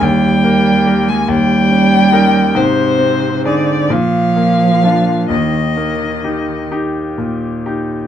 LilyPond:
<<
  \new Staff \with { instrumentName = "Violin" } { \time 6/8 \key ees \major \tempo 4. = 44 g''4~ g''16 aes''16 g''4. | c''4 d''8 f''4. | ees''4. r4. | }
  \new Staff \with { instrumentName = "Grand piano" } { \time 6/8 \key ees \major ees,8 bes8 <g' bes'>8 ees,8 des'8 <ees' bes'>8 | aes,8 c'8 <ees' aes'>8 bes,8 bes8 <d' f'>8 | ees,8 bes8 <ees' g'>8 <ees' g'>8 bes,8 <ees' g'>8 | }
  \new Staff \with { instrumentName = "Cello" } { \clef bass \time 6/8 \key ees \major g4~ g16 aes16 g4. | c4 d8 f4. | ees4. r4. | }
>>